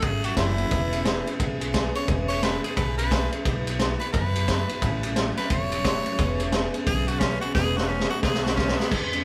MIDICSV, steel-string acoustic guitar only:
0, 0, Header, 1, 2, 480
1, 0, Start_track
1, 0, Key_signature, 4, "major"
1, 0, Tempo, 341686
1, 1009, Time_signature, 4, 2, 24, 8
1, 12980, End_track
2, 0, Start_track
2, 0, Title_t, "Steel-string acoustic guitar"
2, 0, Program_c, 0, 25
2, 40, Note_on_c, 0, 54, 64
2, 53, Note_on_c, 0, 57, 63
2, 67, Note_on_c, 0, 61, 70
2, 87, Note_on_c, 0, 66, 75
2, 326, Note_off_c, 0, 66, 0
2, 342, Note_off_c, 0, 61, 0
2, 343, Note_on_c, 0, 66, 53
2, 344, Note_off_c, 0, 54, 0
2, 350, Note_off_c, 0, 57, 0
2, 359, Note_on_c, 0, 61, 51
2, 376, Note_on_c, 0, 57, 47
2, 378, Note_on_c, 0, 54, 46
2, 514, Note_off_c, 0, 54, 0
2, 515, Note_on_c, 0, 45, 86
2, 517, Note_off_c, 0, 61, 0
2, 520, Note_off_c, 0, 57, 0
2, 520, Note_off_c, 0, 66, 0
2, 523, Note_on_c, 0, 52, 84
2, 531, Note_on_c, 0, 54, 82
2, 534, Note_on_c, 0, 61, 81
2, 537, Note_on_c, 0, 57, 84
2, 537, Note_on_c, 0, 66, 88
2, 808, Note_off_c, 0, 66, 0
2, 822, Note_off_c, 0, 45, 0
2, 824, Note_off_c, 0, 61, 0
2, 825, Note_on_c, 0, 66, 61
2, 826, Note_off_c, 0, 52, 0
2, 830, Note_off_c, 0, 54, 0
2, 832, Note_off_c, 0, 57, 0
2, 841, Note_on_c, 0, 61, 58
2, 856, Note_on_c, 0, 57, 57
2, 866, Note_on_c, 0, 54, 50
2, 1000, Note_on_c, 0, 52, 92
2, 1003, Note_off_c, 0, 61, 0
2, 1007, Note_off_c, 0, 54, 0
2, 1008, Note_off_c, 0, 66, 0
2, 1009, Note_off_c, 0, 57, 0
2, 1013, Note_on_c, 0, 56, 80
2, 1014, Note_on_c, 0, 59, 83
2, 1020, Note_on_c, 0, 61, 86
2, 1034, Note_on_c, 0, 68, 90
2, 1280, Note_off_c, 0, 68, 0
2, 1297, Note_on_c, 0, 68, 61
2, 1305, Note_off_c, 0, 52, 0
2, 1305, Note_off_c, 0, 61, 0
2, 1311, Note_off_c, 0, 56, 0
2, 1312, Note_off_c, 0, 59, 0
2, 1322, Note_on_c, 0, 61, 56
2, 1343, Note_on_c, 0, 59, 49
2, 1484, Note_off_c, 0, 68, 0
2, 1486, Note_off_c, 0, 59, 0
2, 1486, Note_on_c, 0, 52, 82
2, 1491, Note_on_c, 0, 56, 96
2, 1496, Note_off_c, 0, 61, 0
2, 1503, Note_on_c, 0, 59, 91
2, 1515, Note_on_c, 0, 61, 96
2, 1515, Note_on_c, 0, 68, 93
2, 1758, Note_off_c, 0, 68, 0
2, 1775, Note_off_c, 0, 61, 0
2, 1775, Note_on_c, 0, 68, 63
2, 1788, Note_off_c, 0, 52, 0
2, 1791, Note_off_c, 0, 56, 0
2, 1792, Note_on_c, 0, 61, 56
2, 1793, Note_off_c, 0, 59, 0
2, 1810, Note_on_c, 0, 59, 46
2, 1953, Note_off_c, 0, 59, 0
2, 1962, Note_off_c, 0, 61, 0
2, 1963, Note_off_c, 0, 68, 0
2, 1964, Note_on_c, 0, 56, 70
2, 1970, Note_on_c, 0, 59, 72
2, 1979, Note_on_c, 0, 61, 74
2, 2002, Note_on_c, 0, 68, 78
2, 2232, Note_off_c, 0, 68, 0
2, 2249, Note_off_c, 0, 61, 0
2, 2249, Note_on_c, 0, 68, 67
2, 2266, Note_on_c, 0, 61, 59
2, 2267, Note_off_c, 0, 56, 0
2, 2270, Note_off_c, 0, 59, 0
2, 2286, Note_on_c, 0, 59, 53
2, 2423, Note_off_c, 0, 59, 0
2, 2427, Note_on_c, 0, 52, 86
2, 2437, Note_off_c, 0, 61, 0
2, 2440, Note_on_c, 0, 59, 98
2, 2441, Note_off_c, 0, 68, 0
2, 2442, Note_on_c, 0, 56, 94
2, 2454, Note_on_c, 0, 61, 100
2, 2463, Note_on_c, 0, 68, 95
2, 2724, Note_off_c, 0, 68, 0
2, 2739, Note_off_c, 0, 52, 0
2, 2741, Note_on_c, 0, 68, 58
2, 2746, Note_off_c, 0, 59, 0
2, 2747, Note_off_c, 0, 56, 0
2, 2747, Note_off_c, 0, 61, 0
2, 2764, Note_on_c, 0, 61, 57
2, 2782, Note_on_c, 0, 59, 49
2, 2904, Note_off_c, 0, 59, 0
2, 2908, Note_on_c, 0, 52, 74
2, 2916, Note_off_c, 0, 61, 0
2, 2916, Note_on_c, 0, 56, 91
2, 2917, Note_off_c, 0, 68, 0
2, 2921, Note_on_c, 0, 59, 88
2, 2933, Note_on_c, 0, 61, 83
2, 2934, Note_on_c, 0, 68, 90
2, 3191, Note_off_c, 0, 68, 0
2, 3208, Note_on_c, 0, 68, 54
2, 3215, Note_off_c, 0, 61, 0
2, 3220, Note_off_c, 0, 52, 0
2, 3224, Note_off_c, 0, 56, 0
2, 3226, Note_off_c, 0, 59, 0
2, 3232, Note_on_c, 0, 61, 51
2, 3251, Note_on_c, 0, 59, 46
2, 3394, Note_off_c, 0, 59, 0
2, 3401, Note_off_c, 0, 68, 0
2, 3403, Note_off_c, 0, 61, 0
2, 3403, Note_on_c, 0, 56, 79
2, 3404, Note_on_c, 0, 52, 76
2, 3411, Note_on_c, 0, 59, 79
2, 3420, Note_on_c, 0, 61, 86
2, 3429, Note_on_c, 0, 68, 85
2, 3691, Note_off_c, 0, 68, 0
2, 3708, Note_off_c, 0, 52, 0
2, 3708, Note_off_c, 0, 56, 0
2, 3708, Note_on_c, 0, 68, 57
2, 3712, Note_off_c, 0, 59, 0
2, 3716, Note_off_c, 0, 61, 0
2, 3737, Note_on_c, 0, 61, 49
2, 3749, Note_on_c, 0, 59, 47
2, 3886, Note_off_c, 0, 59, 0
2, 3887, Note_on_c, 0, 56, 60
2, 3891, Note_off_c, 0, 68, 0
2, 3896, Note_off_c, 0, 61, 0
2, 3903, Note_on_c, 0, 59, 64
2, 3913, Note_on_c, 0, 61, 64
2, 3924, Note_on_c, 0, 68, 70
2, 4177, Note_off_c, 0, 68, 0
2, 4190, Note_off_c, 0, 56, 0
2, 4193, Note_on_c, 0, 68, 54
2, 4197, Note_off_c, 0, 61, 0
2, 4198, Note_off_c, 0, 59, 0
2, 4214, Note_on_c, 0, 61, 45
2, 4228, Note_on_c, 0, 59, 48
2, 4373, Note_off_c, 0, 59, 0
2, 4374, Note_off_c, 0, 68, 0
2, 4379, Note_off_c, 0, 61, 0
2, 4381, Note_on_c, 0, 52, 76
2, 4387, Note_on_c, 0, 56, 76
2, 4390, Note_on_c, 0, 59, 82
2, 4396, Note_on_c, 0, 61, 89
2, 4402, Note_on_c, 0, 68, 94
2, 4662, Note_off_c, 0, 68, 0
2, 4677, Note_off_c, 0, 52, 0
2, 4679, Note_on_c, 0, 68, 56
2, 4680, Note_off_c, 0, 56, 0
2, 4680, Note_off_c, 0, 61, 0
2, 4681, Note_off_c, 0, 59, 0
2, 4697, Note_on_c, 0, 61, 52
2, 4711, Note_on_c, 0, 59, 48
2, 4857, Note_off_c, 0, 68, 0
2, 4858, Note_off_c, 0, 59, 0
2, 4860, Note_on_c, 0, 47, 95
2, 4866, Note_off_c, 0, 61, 0
2, 4871, Note_on_c, 0, 56, 95
2, 4874, Note_on_c, 0, 59, 102
2, 4880, Note_on_c, 0, 63, 95
2, 4884, Note_on_c, 0, 66, 99
2, 5131, Note_off_c, 0, 66, 0
2, 5148, Note_on_c, 0, 66, 64
2, 5152, Note_off_c, 0, 63, 0
2, 5156, Note_off_c, 0, 47, 0
2, 5162, Note_off_c, 0, 56, 0
2, 5164, Note_off_c, 0, 59, 0
2, 5169, Note_on_c, 0, 63, 58
2, 5192, Note_on_c, 0, 59, 51
2, 5330, Note_off_c, 0, 59, 0
2, 5331, Note_off_c, 0, 66, 0
2, 5331, Note_on_c, 0, 47, 82
2, 5332, Note_on_c, 0, 56, 81
2, 5336, Note_off_c, 0, 63, 0
2, 5347, Note_on_c, 0, 59, 91
2, 5353, Note_on_c, 0, 63, 93
2, 5363, Note_on_c, 0, 66, 99
2, 5618, Note_off_c, 0, 66, 0
2, 5632, Note_off_c, 0, 47, 0
2, 5632, Note_off_c, 0, 56, 0
2, 5635, Note_off_c, 0, 63, 0
2, 5635, Note_on_c, 0, 66, 49
2, 5640, Note_off_c, 0, 59, 0
2, 5652, Note_on_c, 0, 63, 47
2, 5669, Note_on_c, 0, 59, 47
2, 5803, Note_on_c, 0, 56, 63
2, 5804, Note_off_c, 0, 59, 0
2, 5815, Note_off_c, 0, 66, 0
2, 5820, Note_off_c, 0, 63, 0
2, 5821, Note_on_c, 0, 59, 66
2, 5837, Note_on_c, 0, 63, 61
2, 6108, Note_off_c, 0, 56, 0
2, 6117, Note_off_c, 0, 59, 0
2, 6118, Note_on_c, 0, 66, 57
2, 6125, Note_off_c, 0, 63, 0
2, 6143, Note_on_c, 0, 63, 52
2, 6152, Note_on_c, 0, 59, 47
2, 6296, Note_off_c, 0, 59, 0
2, 6296, Note_off_c, 0, 66, 0
2, 6301, Note_off_c, 0, 63, 0
2, 6301, Note_on_c, 0, 47, 76
2, 6305, Note_on_c, 0, 56, 87
2, 6313, Note_on_c, 0, 59, 83
2, 6317, Note_on_c, 0, 63, 86
2, 6326, Note_on_c, 0, 66, 86
2, 6580, Note_off_c, 0, 66, 0
2, 6597, Note_off_c, 0, 47, 0
2, 6597, Note_off_c, 0, 63, 0
2, 6597, Note_on_c, 0, 66, 61
2, 6599, Note_off_c, 0, 56, 0
2, 6603, Note_off_c, 0, 59, 0
2, 6614, Note_on_c, 0, 63, 61
2, 6631, Note_on_c, 0, 59, 56
2, 6769, Note_on_c, 0, 45, 97
2, 6772, Note_on_c, 0, 52, 97
2, 6776, Note_off_c, 0, 59, 0
2, 6776, Note_off_c, 0, 66, 0
2, 6776, Note_on_c, 0, 54, 104
2, 6781, Note_on_c, 0, 57, 106
2, 6784, Note_off_c, 0, 63, 0
2, 6789, Note_on_c, 0, 61, 102
2, 6791, Note_on_c, 0, 66, 99
2, 7066, Note_off_c, 0, 66, 0
2, 7071, Note_off_c, 0, 45, 0
2, 7072, Note_off_c, 0, 52, 0
2, 7074, Note_off_c, 0, 54, 0
2, 7077, Note_off_c, 0, 57, 0
2, 7081, Note_off_c, 0, 61, 0
2, 7083, Note_on_c, 0, 66, 60
2, 7106, Note_on_c, 0, 61, 62
2, 7113, Note_on_c, 0, 57, 57
2, 7122, Note_on_c, 0, 54, 52
2, 7246, Note_off_c, 0, 54, 0
2, 7254, Note_off_c, 0, 57, 0
2, 7258, Note_off_c, 0, 66, 0
2, 7260, Note_on_c, 0, 52, 86
2, 7263, Note_on_c, 0, 54, 97
2, 7264, Note_off_c, 0, 61, 0
2, 7264, Note_on_c, 0, 45, 82
2, 7271, Note_on_c, 0, 57, 89
2, 7281, Note_on_c, 0, 61, 93
2, 7290, Note_on_c, 0, 66, 98
2, 7540, Note_off_c, 0, 66, 0
2, 7556, Note_off_c, 0, 52, 0
2, 7557, Note_off_c, 0, 54, 0
2, 7557, Note_on_c, 0, 66, 48
2, 7558, Note_off_c, 0, 45, 0
2, 7559, Note_off_c, 0, 61, 0
2, 7561, Note_off_c, 0, 57, 0
2, 7575, Note_on_c, 0, 61, 50
2, 7583, Note_on_c, 0, 57, 46
2, 7593, Note_on_c, 0, 54, 43
2, 7736, Note_off_c, 0, 66, 0
2, 7737, Note_off_c, 0, 54, 0
2, 7745, Note_off_c, 0, 61, 0
2, 7749, Note_off_c, 0, 57, 0
2, 7753, Note_on_c, 0, 54, 66
2, 7765, Note_on_c, 0, 57, 68
2, 7779, Note_on_c, 0, 61, 66
2, 7785, Note_on_c, 0, 66, 68
2, 8023, Note_off_c, 0, 66, 0
2, 8037, Note_off_c, 0, 61, 0
2, 8040, Note_on_c, 0, 66, 54
2, 8043, Note_off_c, 0, 54, 0
2, 8048, Note_off_c, 0, 57, 0
2, 8054, Note_on_c, 0, 61, 56
2, 8072, Note_on_c, 0, 57, 49
2, 8083, Note_on_c, 0, 54, 45
2, 8217, Note_off_c, 0, 66, 0
2, 8217, Note_on_c, 0, 45, 79
2, 8219, Note_off_c, 0, 54, 0
2, 8224, Note_off_c, 0, 61, 0
2, 8227, Note_off_c, 0, 57, 0
2, 8227, Note_on_c, 0, 52, 81
2, 8236, Note_on_c, 0, 54, 77
2, 8240, Note_on_c, 0, 61, 91
2, 8243, Note_on_c, 0, 57, 88
2, 8243, Note_on_c, 0, 66, 86
2, 8488, Note_off_c, 0, 66, 0
2, 8505, Note_on_c, 0, 66, 67
2, 8508, Note_off_c, 0, 61, 0
2, 8514, Note_off_c, 0, 45, 0
2, 8519, Note_off_c, 0, 52, 0
2, 8522, Note_off_c, 0, 57, 0
2, 8524, Note_off_c, 0, 54, 0
2, 8525, Note_on_c, 0, 61, 62
2, 8539, Note_on_c, 0, 57, 56
2, 8550, Note_on_c, 0, 54, 53
2, 8689, Note_off_c, 0, 66, 0
2, 8698, Note_on_c, 0, 52, 88
2, 8699, Note_off_c, 0, 61, 0
2, 8705, Note_off_c, 0, 54, 0
2, 8706, Note_off_c, 0, 57, 0
2, 8711, Note_on_c, 0, 56, 101
2, 8715, Note_on_c, 0, 59, 105
2, 8729, Note_on_c, 0, 61, 101
2, 8729, Note_on_c, 0, 68, 106
2, 8985, Note_off_c, 0, 68, 0
2, 8995, Note_off_c, 0, 52, 0
2, 9001, Note_off_c, 0, 56, 0
2, 9002, Note_on_c, 0, 68, 61
2, 9003, Note_off_c, 0, 59, 0
2, 9005, Note_off_c, 0, 61, 0
2, 9021, Note_on_c, 0, 61, 53
2, 9041, Note_on_c, 0, 59, 58
2, 9176, Note_on_c, 0, 52, 83
2, 9177, Note_off_c, 0, 68, 0
2, 9182, Note_off_c, 0, 59, 0
2, 9182, Note_off_c, 0, 61, 0
2, 9189, Note_on_c, 0, 56, 84
2, 9198, Note_on_c, 0, 61, 97
2, 9199, Note_on_c, 0, 59, 92
2, 9203, Note_on_c, 0, 68, 103
2, 9448, Note_off_c, 0, 68, 0
2, 9465, Note_on_c, 0, 68, 66
2, 9473, Note_off_c, 0, 52, 0
2, 9475, Note_off_c, 0, 61, 0
2, 9480, Note_off_c, 0, 56, 0
2, 9485, Note_off_c, 0, 59, 0
2, 9491, Note_on_c, 0, 61, 53
2, 9509, Note_on_c, 0, 59, 55
2, 9648, Note_off_c, 0, 68, 0
2, 9651, Note_on_c, 0, 56, 63
2, 9654, Note_off_c, 0, 59, 0
2, 9662, Note_off_c, 0, 61, 0
2, 9690, Note_on_c, 0, 61, 69
2, 9693, Note_on_c, 0, 68, 72
2, 9944, Note_off_c, 0, 68, 0
2, 9950, Note_off_c, 0, 56, 0
2, 9961, Note_off_c, 0, 61, 0
2, 9961, Note_on_c, 0, 68, 64
2, 9978, Note_on_c, 0, 61, 51
2, 9999, Note_on_c, 0, 59, 46
2, 10136, Note_off_c, 0, 59, 0
2, 10136, Note_off_c, 0, 68, 0
2, 10139, Note_on_c, 0, 52, 79
2, 10144, Note_off_c, 0, 61, 0
2, 10145, Note_on_c, 0, 56, 89
2, 10152, Note_on_c, 0, 59, 82
2, 10162, Note_on_c, 0, 61, 86
2, 10163, Note_on_c, 0, 68, 84
2, 10404, Note_off_c, 0, 68, 0
2, 10421, Note_on_c, 0, 68, 57
2, 10426, Note_off_c, 0, 61, 0
2, 10434, Note_off_c, 0, 52, 0
2, 10437, Note_off_c, 0, 56, 0
2, 10437, Note_off_c, 0, 59, 0
2, 10442, Note_on_c, 0, 61, 60
2, 10454, Note_on_c, 0, 59, 52
2, 10600, Note_off_c, 0, 59, 0
2, 10600, Note_on_c, 0, 52, 72
2, 10602, Note_on_c, 0, 56, 80
2, 10606, Note_off_c, 0, 68, 0
2, 10609, Note_off_c, 0, 61, 0
2, 10617, Note_on_c, 0, 59, 91
2, 10622, Note_on_c, 0, 68, 96
2, 10626, Note_on_c, 0, 61, 93
2, 10883, Note_off_c, 0, 68, 0
2, 10899, Note_on_c, 0, 68, 59
2, 10902, Note_off_c, 0, 61, 0
2, 10904, Note_off_c, 0, 52, 0
2, 10905, Note_off_c, 0, 56, 0
2, 10913, Note_off_c, 0, 59, 0
2, 10918, Note_on_c, 0, 61, 55
2, 10935, Note_on_c, 0, 59, 49
2, 11073, Note_off_c, 0, 59, 0
2, 11079, Note_on_c, 0, 52, 78
2, 11083, Note_on_c, 0, 56, 75
2, 11085, Note_off_c, 0, 68, 0
2, 11086, Note_off_c, 0, 61, 0
2, 11090, Note_on_c, 0, 59, 78
2, 11103, Note_on_c, 0, 61, 78
2, 11105, Note_on_c, 0, 68, 88
2, 11371, Note_off_c, 0, 68, 0
2, 11383, Note_off_c, 0, 52, 0
2, 11385, Note_off_c, 0, 56, 0
2, 11388, Note_on_c, 0, 68, 58
2, 11389, Note_off_c, 0, 59, 0
2, 11391, Note_off_c, 0, 61, 0
2, 11408, Note_on_c, 0, 61, 50
2, 11427, Note_on_c, 0, 59, 44
2, 11545, Note_on_c, 0, 56, 62
2, 11549, Note_off_c, 0, 59, 0
2, 11563, Note_off_c, 0, 61, 0
2, 11566, Note_on_c, 0, 59, 70
2, 11569, Note_off_c, 0, 68, 0
2, 11579, Note_on_c, 0, 61, 65
2, 11588, Note_on_c, 0, 68, 71
2, 11845, Note_off_c, 0, 68, 0
2, 11856, Note_off_c, 0, 56, 0
2, 11862, Note_on_c, 0, 68, 54
2, 11864, Note_off_c, 0, 61, 0
2, 11867, Note_off_c, 0, 59, 0
2, 11880, Note_on_c, 0, 61, 52
2, 11899, Note_on_c, 0, 59, 48
2, 12036, Note_on_c, 0, 52, 77
2, 12037, Note_off_c, 0, 61, 0
2, 12038, Note_off_c, 0, 59, 0
2, 12043, Note_on_c, 0, 56, 87
2, 12045, Note_off_c, 0, 68, 0
2, 12054, Note_on_c, 0, 61, 84
2, 12055, Note_on_c, 0, 59, 84
2, 12064, Note_on_c, 0, 68, 93
2, 12331, Note_off_c, 0, 68, 0
2, 12342, Note_off_c, 0, 52, 0
2, 12345, Note_off_c, 0, 56, 0
2, 12348, Note_on_c, 0, 68, 57
2, 12351, Note_off_c, 0, 59, 0
2, 12351, Note_off_c, 0, 61, 0
2, 12370, Note_on_c, 0, 61, 52
2, 12385, Note_on_c, 0, 59, 48
2, 12518, Note_off_c, 0, 59, 0
2, 12522, Note_on_c, 0, 56, 84
2, 12523, Note_on_c, 0, 52, 83
2, 12525, Note_off_c, 0, 61, 0
2, 12528, Note_off_c, 0, 68, 0
2, 12535, Note_on_c, 0, 59, 82
2, 12542, Note_on_c, 0, 61, 86
2, 12544, Note_on_c, 0, 68, 99
2, 12793, Note_off_c, 0, 68, 0
2, 12809, Note_on_c, 0, 68, 64
2, 12814, Note_off_c, 0, 61, 0
2, 12824, Note_off_c, 0, 56, 0
2, 12825, Note_off_c, 0, 52, 0
2, 12831, Note_off_c, 0, 59, 0
2, 12831, Note_on_c, 0, 61, 59
2, 12851, Note_on_c, 0, 59, 49
2, 12980, Note_off_c, 0, 59, 0
2, 12980, Note_off_c, 0, 61, 0
2, 12980, Note_off_c, 0, 68, 0
2, 12980, End_track
0, 0, End_of_file